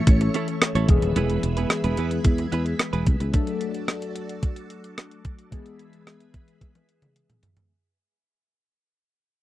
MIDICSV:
0, 0, Header, 1, 7, 480
1, 0, Start_track
1, 0, Tempo, 545455
1, 1019, Time_signature, 4, 2, 24, 8
1, 8291, End_track
2, 0, Start_track
2, 0, Title_t, "String machine"
2, 0, Program_c, 0, 50
2, 0, Note_on_c, 0, 69, 78
2, 0, Note_on_c, 0, 73, 75
2, 0, Note_on_c, 0, 76, 75
2, 0, Note_on_c, 0, 85, 90
2, 766, Note_off_c, 0, 76, 0
2, 766, Note_off_c, 0, 85, 0
2, 767, Note_off_c, 0, 69, 0
2, 767, Note_off_c, 0, 73, 0
2, 783, Note_on_c, 0, 68, 80
2, 783, Note_on_c, 0, 71, 74
2, 783, Note_on_c, 0, 83, 89
2, 784, Note_on_c, 0, 76, 73
2, 2919, Note_off_c, 0, 68, 0
2, 2919, Note_off_c, 0, 83, 0
2, 2920, Note_off_c, 0, 71, 0
2, 2920, Note_off_c, 0, 76, 0
2, 2940, Note_on_c, 0, 81, 89
2, 2941, Note_on_c, 0, 69, 70
2, 2942, Note_on_c, 0, 66, 79
2, 2943, Note_on_c, 0, 74, 72
2, 4840, Note_off_c, 0, 81, 0
2, 4841, Note_off_c, 0, 66, 0
2, 4841, Note_off_c, 0, 69, 0
2, 4842, Note_off_c, 0, 74, 0
2, 4858, Note_on_c, 0, 68, 76
2, 4858, Note_on_c, 0, 71, 71
2, 4859, Note_on_c, 0, 76, 67
2, 4859, Note_on_c, 0, 83, 89
2, 6759, Note_off_c, 0, 68, 0
2, 6759, Note_off_c, 0, 71, 0
2, 6760, Note_off_c, 0, 76, 0
2, 6760, Note_off_c, 0, 83, 0
2, 8291, End_track
3, 0, Start_track
3, 0, Title_t, "Clean electric guitar"
3, 0, Program_c, 1, 27
3, 304, Note_on_c, 1, 61, 76
3, 311, Note_on_c, 1, 64, 73
3, 317, Note_on_c, 1, 69, 76
3, 321, Note_on_c, 1, 73, 76
3, 414, Note_off_c, 1, 73, 0
3, 421, Note_off_c, 1, 69, 0
3, 426, Note_off_c, 1, 64, 0
3, 480, Note_off_c, 1, 61, 0
3, 663, Note_on_c, 1, 73, 79
3, 670, Note_on_c, 1, 69, 72
3, 674, Note_on_c, 1, 64, 66
3, 680, Note_on_c, 1, 61, 60
3, 775, Note_off_c, 1, 64, 0
3, 779, Note_off_c, 1, 61, 0
3, 789, Note_off_c, 1, 69, 0
3, 791, Note_off_c, 1, 73, 0
3, 1021, Note_on_c, 1, 59, 69
3, 1028, Note_on_c, 1, 64, 84
3, 1033, Note_on_c, 1, 68, 79
3, 1038, Note_on_c, 1, 71, 78
3, 1241, Note_off_c, 1, 59, 0
3, 1244, Note_off_c, 1, 64, 0
3, 1247, Note_off_c, 1, 68, 0
3, 1249, Note_off_c, 1, 71, 0
3, 1380, Note_on_c, 1, 71, 54
3, 1387, Note_on_c, 1, 68, 53
3, 1392, Note_on_c, 1, 64, 52
3, 1396, Note_on_c, 1, 59, 48
3, 1491, Note_off_c, 1, 59, 0
3, 1495, Note_off_c, 1, 64, 0
3, 1499, Note_off_c, 1, 68, 0
3, 1503, Note_off_c, 1, 71, 0
3, 1620, Note_on_c, 1, 71, 60
3, 1627, Note_on_c, 1, 68, 55
3, 1631, Note_on_c, 1, 64, 52
3, 1637, Note_on_c, 1, 59, 44
3, 1730, Note_off_c, 1, 59, 0
3, 1737, Note_off_c, 1, 64, 0
3, 1741, Note_on_c, 1, 59, 83
3, 1742, Note_off_c, 1, 68, 0
3, 1747, Note_off_c, 1, 71, 0
3, 1747, Note_on_c, 1, 64, 85
3, 1753, Note_on_c, 1, 68, 93
3, 1758, Note_on_c, 1, 71, 83
3, 1850, Note_off_c, 1, 71, 0
3, 1858, Note_off_c, 1, 68, 0
3, 1864, Note_off_c, 1, 64, 0
3, 1918, Note_off_c, 1, 59, 0
3, 2218, Note_on_c, 1, 59, 67
3, 2224, Note_on_c, 1, 64, 72
3, 2229, Note_on_c, 1, 68, 74
3, 2235, Note_on_c, 1, 71, 89
3, 2333, Note_off_c, 1, 71, 0
3, 2337, Note_off_c, 1, 68, 0
3, 2344, Note_off_c, 1, 64, 0
3, 2397, Note_off_c, 1, 59, 0
3, 2577, Note_on_c, 1, 71, 87
3, 2584, Note_on_c, 1, 68, 72
3, 2590, Note_on_c, 1, 64, 68
3, 2594, Note_on_c, 1, 59, 62
3, 2689, Note_off_c, 1, 59, 0
3, 2694, Note_off_c, 1, 64, 0
3, 2696, Note_off_c, 1, 68, 0
3, 2700, Note_off_c, 1, 71, 0
3, 8291, End_track
4, 0, Start_track
4, 0, Title_t, "Tine electric piano"
4, 0, Program_c, 2, 4
4, 0, Control_c, 2, 64, 127
4, 0, Note_on_c, 2, 52, 75
4, 0, Note_on_c, 2, 57, 68
4, 0, Note_on_c, 2, 61, 67
4, 0, Note_on_c, 2, 69, 85
4, 742, Note_off_c, 2, 52, 0
4, 746, Note_off_c, 2, 57, 0
4, 753, Note_off_c, 2, 69, 0
4, 770, Note_on_c, 2, 52, 66
4, 780, Note_off_c, 2, 61, 0
4, 780, Note_on_c, 2, 56, 64
4, 788, Control_c, 2, 64, 0
4, 788, Note_on_c, 2, 59, 63
4, 793, Note_on_c, 2, 68, 78
4, 928, Control_c, 2, 64, 127
4, 2659, Note_off_c, 2, 52, 0
4, 2664, Note_off_c, 2, 56, 0
4, 2668, Note_off_c, 2, 59, 0
4, 2671, Note_off_c, 2, 68, 0
4, 2927, Note_on_c, 2, 54, 73
4, 2936, Note_on_c, 2, 57, 69
4, 2942, Note_on_c, 2, 62, 64
4, 2950, Control_c, 2, 64, 0
4, 2951, Note_on_c, 2, 69, 80
4, 3096, Control_c, 2, 64, 127
4, 4818, Note_off_c, 2, 54, 0
4, 4822, Note_off_c, 2, 57, 0
4, 4825, Note_off_c, 2, 62, 0
4, 4830, Note_off_c, 2, 69, 0
4, 4847, Note_on_c, 2, 52, 72
4, 4855, Note_on_c, 2, 56, 65
4, 4861, Note_on_c, 2, 59, 63
4, 4868, Note_on_c, 2, 68, 77
4, 4872, Control_c, 2, 64, 0
4, 4998, Control_c, 2, 64, 127
4, 6738, Note_off_c, 2, 52, 0
4, 6742, Note_off_c, 2, 56, 0
4, 6745, Note_off_c, 2, 59, 0
4, 6748, Note_off_c, 2, 68, 0
4, 6790, Control_c, 2, 64, 0
4, 8291, End_track
5, 0, Start_track
5, 0, Title_t, "Fretless electric bass"
5, 0, Program_c, 3, 35
5, 63, Note_on_c, 3, 33, 86
5, 241, Note_off_c, 3, 33, 0
5, 660, Note_on_c, 3, 33, 73
5, 750, Note_off_c, 3, 33, 0
5, 782, Note_on_c, 3, 28, 94
5, 871, Note_off_c, 3, 28, 0
5, 901, Note_on_c, 3, 27, 79
5, 990, Note_off_c, 3, 27, 0
5, 1023, Note_on_c, 3, 28, 99
5, 1201, Note_off_c, 3, 28, 0
5, 1263, Note_on_c, 3, 28, 94
5, 1441, Note_off_c, 3, 28, 0
5, 1621, Note_on_c, 3, 28, 89
5, 1710, Note_off_c, 3, 28, 0
5, 1739, Note_on_c, 3, 40, 86
5, 1919, Note_off_c, 3, 40, 0
5, 1978, Note_on_c, 3, 40, 93
5, 2158, Note_off_c, 3, 40, 0
5, 2223, Note_on_c, 3, 40, 81
5, 2401, Note_off_c, 3, 40, 0
5, 2580, Note_on_c, 3, 28, 76
5, 2670, Note_off_c, 3, 28, 0
5, 2699, Note_on_c, 3, 36, 78
5, 2789, Note_off_c, 3, 36, 0
5, 2817, Note_on_c, 3, 37, 73
5, 2908, Note_off_c, 3, 37, 0
5, 8291, End_track
6, 0, Start_track
6, 0, Title_t, "Muted clean electric guitar strokes"
6, 69, Note_on_c, 9, 29, 43
6, 157, Note_off_c, 9, 29, 0
6, 185, Note_on_c, 9, 29, 48
6, 273, Note_off_c, 9, 29, 0
6, 424, Note_on_c, 9, 29, 39
6, 512, Note_off_c, 9, 29, 0
6, 544, Note_on_c, 9, 29, 35
6, 632, Note_off_c, 9, 29, 0
6, 900, Note_on_c, 9, 29, 46
6, 988, Note_off_c, 9, 29, 0
6, 1264, Note_on_c, 9, 29, 43
6, 1352, Note_off_c, 9, 29, 0
6, 1501, Note_on_c, 9, 29, 41
6, 1589, Note_off_c, 9, 29, 0
6, 1861, Note_on_c, 9, 29, 41
6, 1949, Note_off_c, 9, 29, 0
6, 2102, Note_on_c, 9, 29, 35
6, 2190, Note_off_c, 9, 29, 0
6, 2343, Note_on_c, 9, 29, 38
6, 2431, Note_off_c, 9, 29, 0
6, 2461, Note_on_c, 9, 29, 33
6, 2549, Note_off_c, 9, 29, 0
6, 2820, Note_on_c, 9, 29, 41
6, 2908, Note_off_c, 9, 29, 0
6, 8291, End_track
7, 0, Start_track
7, 0, Title_t, "Drums"
7, 61, Note_on_c, 9, 42, 80
7, 62, Note_on_c, 9, 36, 89
7, 149, Note_off_c, 9, 42, 0
7, 150, Note_off_c, 9, 36, 0
7, 183, Note_on_c, 9, 42, 54
7, 271, Note_off_c, 9, 42, 0
7, 302, Note_on_c, 9, 42, 64
7, 390, Note_off_c, 9, 42, 0
7, 421, Note_on_c, 9, 42, 43
7, 509, Note_off_c, 9, 42, 0
7, 542, Note_on_c, 9, 37, 99
7, 543, Note_on_c, 9, 42, 85
7, 630, Note_off_c, 9, 37, 0
7, 631, Note_off_c, 9, 42, 0
7, 663, Note_on_c, 9, 42, 48
7, 751, Note_off_c, 9, 42, 0
7, 779, Note_on_c, 9, 42, 74
7, 781, Note_on_c, 9, 36, 100
7, 867, Note_off_c, 9, 42, 0
7, 869, Note_off_c, 9, 36, 0
7, 901, Note_on_c, 9, 42, 48
7, 989, Note_off_c, 9, 42, 0
7, 1021, Note_on_c, 9, 42, 78
7, 1109, Note_off_c, 9, 42, 0
7, 1141, Note_on_c, 9, 42, 43
7, 1229, Note_off_c, 9, 42, 0
7, 1260, Note_on_c, 9, 42, 63
7, 1348, Note_off_c, 9, 42, 0
7, 1379, Note_on_c, 9, 42, 46
7, 1467, Note_off_c, 9, 42, 0
7, 1496, Note_on_c, 9, 37, 102
7, 1497, Note_on_c, 9, 42, 67
7, 1584, Note_off_c, 9, 37, 0
7, 1585, Note_off_c, 9, 42, 0
7, 1618, Note_on_c, 9, 42, 52
7, 1706, Note_off_c, 9, 42, 0
7, 1737, Note_on_c, 9, 42, 69
7, 1825, Note_off_c, 9, 42, 0
7, 1857, Note_on_c, 9, 42, 48
7, 1945, Note_off_c, 9, 42, 0
7, 1976, Note_on_c, 9, 42, 77
7, 1977, Note_on_c, 9, 36, 84
7, 2064, Note_off_c, 9, 42, 0
7, 2065, Note_off_c, 9, 36, 0
7, 2097, Note_on_c, 9, 42, 53
7, 2185, Note_off_c, 9, 42, 0
7, 2220, Note_on_c, 9, 42, 61
7, 2308, Note_off_c, 9, 42, 0
7, 2339, Note_on_c, 9, 42, 43
7, 2427, Note_off_c, 9, 42, 0
7, 2459, Note_on_c, 9, 37, 99
7, 2460, Note_on_c, 9, 42, 83
7, 2547, Note_off_c, 9, 37, 0
7, 2548, Note_off_c, 9, 42, 0
7, 2581, Note_on_c, 9, 42, 47
7, 2669, Note_off_c, 9, 42, 0
7, 2697, Note_on_c, 9, 42, 71
7, 2699, Note_on_c, 9, 36, 89
7, 2785, Note_off_c, 9, 42, 0
7, 2787, Note_off_c, 9, 36, 0
7, 2819, Note_on_c, 9, 42, 50
7, 2907, Note_off_c, 9, 42, 0
7, 2935, Note_on_c, 9, 42, 75
7, 2938, Note_on_c, 9, 36, 88
7, 3023, Note_off_c, 9, 42, 0
7, 3026, Note_off_c, 9, 36, 0
7, 3054, Note_on_c, 9, 42, 41
7, 3142, Note_off_c, 9, 42, 0
7, 3175, Note_on_c, 9, 42, 61
7, 3263, Note_off_c, 9, 42, 0
7, 3295, Note_on_c, 9, 42, 46
7, 3383, Note_off_c, 9, 42, 0
7, 3416, Note_on_c, 9, 37, 104
7, 3417, Note_on_c, 9, 42, 66
7, 3504, Note_off_c, 9, 37, 0
7, 3505, Note_off_c, 9, 42, 0
7, 3538, Note_on_c, 9, 42, 53
7, 3626, Note_off_c, 9, 42, 0
7, 3657, Note_on_c, 9, 42, 66
7, 3745, Note_off_c, 9, 42, 0
7, 3779, Note_on_c, 9, 42, 47
7, 3867, Note_off_c, 9, 42, 0
7, 3896, Note_on_c, 9, 36, 82
7, 3896, Note_on_c, 9, 42, 77
7, 3984, Note_off_c, 9, 36, 0
7, 3984, Note_off_c, 9, 42, 0
7, 4015, Note_on_c, 9, 42, 50
7, 4103, Note_off_c, 9, 42, 0
7, 4137, Note_on_c, 9, 42, 63
7, 4225, Note_off_c, 9, 42, 0
7, 4260, Note_on_c, 9, 42, 42
7, 4348, Note_off_c, 9, 42, 0
7, 4380, Note_on_c, 9, 37, 100
7, 4381, Note_on_c, 9, 42, 80
7, 4468, Note_off_c, 9, 37, 0
7, 4469, Note_off_c, 9, 42, 0
7, 4501, Note_on_c, 9, 42, 43
7, 4589, Note_off_c, 9, 42, 0
7, 4618, Note_on_c, 9, 42, 73
7, 4619, Note_on_c, 9, 36, 83
7, 4706, Note_off_c, 9, 42, 0
7, 4707, Note_off_c, 9, 36, 0
7, 4740, Note_on_c, 9, 42, 46
7, 4828, Note_off_c, 9, 42, 0
7, 4859, Note_on_c, 9, 36, 87
7, 4859, Note_on_c, 9, 42, 79
7, 4947, Note_off_c, 9, 36, 0
7, 4947, Note_off_c, 9, 42, 0
7, 4979, Note_on_c, 9, 42, 45
7, 5067, Note_off_c, 9, 42, 0
7, 5099, Note_on_c, 9, 42, 60
7, 5187, Note_off_c, 9, 42, 0
7, 5219, Note_on_c, 9, 42, 44
7, 5307, Note_off_c, 9, 42, 0
7, 5342, Note_on_c, 9, 37, 102
7, 5343, Note_on_c, 9, 42, 67
7, 5430, Note_off_c, 9, 37, 0
7, 5431, Note_off_c, 9, 42, 0
7, 5460, Note_on_c, 9, 42, 53
7, 5548, Note_off_c, 9, 42, 0
7, 5579, Note_on_c, 9, 42, 61
7, 5580, Note_on_c, 9, 36, 81
7, 5667, Note_off_c, 9, 42, 0
7, 5668, Note_off_c, 9, 36, 0
7, 5701, Note_on_c, 9, 42, 47
7, 5789, Note_off_c, 9, 42, 0
7, 5819, Note_on_c, 9, 36, 81
7, 5820, Note_on_c, 9, 42, 70
7, 5822, Note_on_c, 9, 48, 46
7, 5907, Note_off_c, 9, 36, 0
7, 5908, Note_off_c, 9, 42, 0
7, 5910, Note_off_c, 9, 48, 0
7, 5942, Note_on_c, 9, 42, 50
7, 5943, Note_on_c, 9, 48, 47
7, 6030, Note_off_c, 9, 42, 0
7, 6031, Note_off_c, 9, 48, 0
7, 6061, Note_on_c, 9, 42, 59
7, 6149, Note_off_c, 9, 42, 0
7, 6179, Note_on_c, 9, 47, 56
7, 6180, Note_on_c, 9, 42, 42
7, 6267, Note_off_c, 9, 47, 0
7, 6268, Note_off_c, 9, 42, 0
7, 6300, Note_on_c, 9, 42, 73
7, 6388, Note_off_c, 9, 42, 0
7, 6420, Note_on_c, 9, 45, 66
7, 6421, Note_on_c, 9, 42, 44
7, 6508, Note_off_c, 9, 45, 0
7, 6509, Note_off_c, 9, 42, 0
7, 6537, Note_on_c, 9, 42, 69
7, 6539, Note_on_c, 9, 43, 84
7, 6625, Note_off_c, 9, 42, 0
7, 6627, Note_off_c, 9, 43, 0
7, 6658, Note_on_c, 9, 42, 44
7, 6659, Note_on_c, 9, 43, 72
7, 6746, Note_off_c, 9, 42, 0
7, 6747, Note_off_c, 9, 43, 0
7, 8291, End_track
0, 0, End_of_file